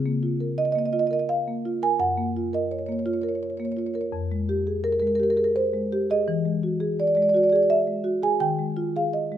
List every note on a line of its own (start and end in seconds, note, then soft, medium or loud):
0.00 1.96 C#3 soft
0.06 0.34 A#3 soft
0.23 0.51 F4 soft
0.40 0.97 A#4 soft
0.58 0.65 D#5 medium
0.65 0.72 D#5 medium
0.72 1.04 A#3 soft
0.72 0.79 D#5 medium
0.79 0.86 D#5 medium
0.86 0.93 D#5 medium
0.93 1.22 F4 soft
0.93 0.99 D#5 medium
0.99 1.07 D#5 medium
1.07 1.68 A#4 soft
1.07 1.13 D#5 medium
1.13 1.19 D#5 medium
1.19 1.26 D#5 medium
1.29 1.80 F5 medium
1.48 1.76 A#3 soft
1.65 1.94 F4 medium
1.82 2.00 A#4 medium
1.82 2.01 G#5 medium
1.99 4.09 F#2 medium
1.99 2.52 F#5 medium
2.18 2.47 A#3 soft
2.37 2.65 F4 soft
2.53 3.11 A#4 medium
2.53 2.72 D#5 medium
2.71 2.79 C#5 medium
2.79 2.86 C#5 soft
2.86 3.18 A#3 soft
2.86 2.92 C#5 soft
2.92 2.99 C#5 soft
2.99 3.07 C#5 soft
3.06 3.35 F4 medium
3.06 3.13 C#5 soft
3.13 3.22 C#5 soft
3.22 3.80 A#4 medium
3.22 3.29 C#5 soft
3.29 3.35 C#5 soft
3.35 3.43 C#5 soft
3.43 3.50 C#5 soft
3.50 3.57 C#5 soft
3.57 3.88 A#3 soft
3.57 3.65 C#5 soft
3.65 3.72 C#5 soft
3.72 3.79 C#5 soft
3.77 4.05 F4 soft
3.77 3.86 C#5 soft
3.86 3.94 C#5 soft
3.94 4.13 A#4 medium
3.94 4.01 C#5 soft
4.01 4.09 C#5 soft
4.12 6.23 F2 medium
4.32 4.59 G#3 soft
4.49 4.77 G4 medium
4.67 5.24 G#4 soft
4.84 4.92 A#4 medium
4.92 5.00 A#4 medium
5.00 5.30 G#3 soft
5.00 5.07 A#4 medium
5.07 5.15 A#4 medium
5.15 5.23 A#4 medium
5.20 5.48 G4 medium
5.20 5.30 A#4 medium
5.30 5.37 A#4 medium
5.37 5.94 G#4 soft
5.37 5.44 A#4 medium
5.44 5.52 A#4 medium
5.56 6.07 C5 medium
5.74 6.02 G#3 soft
5.92 6.21 G4 medium
6.10 6.28 G#4 soft
6.10 6.28 D#5 medium
6.28 8.37 E3 medium
6.45 6.74 G#3 soft
6.63 6.92 F#4 soft
6.80 7.38 G#4 medium
7.00 7.07 D5 medium
7.07 7.15 D5 medium
7.15 7.45 G#3 soft
7.15 7.22 D5 medium
7.22 7.29 D5 soft
7.29 7.36 D5 medium
7.34 7.63 F#4 soft
7.34 7.43 D5 soft
7.43 7.50 D5 medium
7.50 8.09 G#4 soft
7.50 7.56 D5 medium
7.56 7.63 D5 medium
7.63 7.68 D5 soft
7.70 8.21 E5 medium
7.87 8.16 G#3 soft
8.04 8.33 F#4 medium
8.23 8.41 G#4 medium
8.23 8.41 G#5 medium
8.40 9.38 D#3 soft
8.40 8.92 G5 medium
8.59 8.88 G#3 soft
8.77 9.06 F4 soft
8.96 9.38 G#4 soft
8.96 9.14 F5 medium
9.13 9.38 D#5 medium
9.32 9.38 G#3 soft